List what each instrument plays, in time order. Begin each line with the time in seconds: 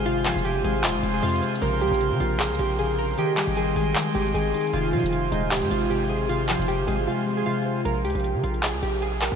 Already playing: 808-style bass G#1, harp G#3 C4 D#4 C5, accordion C5 F5 G#5 C6
0.06 harp C3, synth keys F4, closed hi-hat
0.25 harp F3, synth keys F4, clap, closed hi-hat, open hi-hat
0.32 808-style bass F1, closed hi-hat
0.38 closed hi-hat
0.45 harp C3, synth keys G4, closed hi-hat
0.55 808-style bass G1
0.64 808-style bass G#1, harp G#3, synth keys G#4, closed hi-hat
0.84 808-style bass D#1, harp C3, synth keys F4, clap, closed hi-hat
0.90 808-style bass G#1, closed hi-hat
0.97 closed hi-hat
1.03 808-style bass F1, harp C4, closed hi-hat
1.14 synth keys G#4
1.23 808-style bass F2, harp C3, synth keys F4, closed hi-hat
1.29 closed hi-hat
1.36 closed hi-hat
1.42 harp C5, closed hi-hat
1.49 closed hi-hat
1.55 closed hi-hat
1.62 808-style bass A#1, harp C#3, accordion A#4 C5, synth keys A#4, closed hi-hat
1.81 808-style bass C#2, harp F3, synth keys G4, closed hi-hat
1.88 808-style bass A#1, closed hi-hat
1.94 closed hi-hat
2.01 harp C#3, closed hi-hat
2.11 808-style bass C#3
2.20 808-style bass A#1, harp A#3, synth keys F4, closed hi-hat
2.39 harp C#3, synth keys G#4, clap, closed hi-hat
2.45 closed hi-hat
2.50 808-style bass C#2, closed hi-hat
2.55 closed hi-hat
2.59 808-style bass A#1, harp C4, synth keys G4, closed hi-hat
2.79 harp C#3, synth keys G#4, closed hi-hat
2.98 harp C#4, synth keys A#4
3.17 harp D#3, synth keys G4, accordion D#5 G5 G#5 C6, closed hi-hat
3.36 harp G3, synth keys G4, clap, open hi-hat
3.47 808-style bass G#1
3.57 harp D#3, synth keys G#4, closed hi-hat
3.76 808-style bass G#1, harp G#3, synth keys G#4, closed hi-hat
3.95 harp D#3, clap, closed hi-hat
4.15 808-style bass G#1, harp C4, synth keys G4, closed hi-hat
4.34 808-style bass G#1, harp D#3, synth keys G#4, closed hi-hat
4.54 harp D#4, closed hi-hat
4.61 closed hi-hat
4.67 closed hi-hat
4.73 808-style bass F1, harp C3, synth keys F4, accordion C5 F5, closed hi-hat
4.93 808-style bass C3, harp F3, synth keys F4, closed hi-hat
4.99 808-style bass F1, closed hi-hat
5.06 closed hi-hat
5.12 harp C3, closed hi-hat
5.32 808-style bass D#1, harp G#3, synth keys D#4, closed hi-hat
5.51 harp C3, synth keys G4, clap, closed hi-hat
5.57 closed hi-hat
5.62 808-style bass G#2, closed hi-hat
5.66 closed hi-hat
5.71 808-style bass G#1, harp C4, synth keys F4, closed hi-hat
5.90 harp C3, synth keys G4, closed hi-hat
6.09 synth keys G#4, harp C5
6.29 harp C3, synth keys F4, closed hi-hat
6.49 harp F3, synth keys F4, clap, closed hi-hat, open hi-hat
6.55 808-style bass F1, closed hi-hat
6.62 closed hi-hat
6.68 harp C3, synth keys G4, closed hi-hat
6.79 808-style bass G1
6.87 808-style bass G#1, harp G#3, synth keys G#4, closed hi-hat
7.07 harp C3, synth keys F4
7.26 harp C4
7.37 synth keys G#4
7.46 harp C3, synth keys F4
7.65 harp C5
7.85 808-style bass A#1, synth keys A#4, closed hi-hat
8.05 808-style bass C#2, synth keys G4, closed hi-hat
8.10 closed hi-hat
8.15 808-style bass A#1, closed hi-hat
8.20 closed hi-hat
8.24 closed hi-hat
8.34 808-style bass C#3
8.44 808-style bass A#1, synth keys F4, closed hi-hat
8.54 closed hi-hat
8.63 synth keys G#4, clap, closed hi-hat
8.73 808-style bass C#2
8.82 808-style bass A#1, synth keys G4, closed hi-hat
9.02 synth keys G#4, closed hi-hat
9.22 synth keys A#4, clap
9.32 808-style bass D#2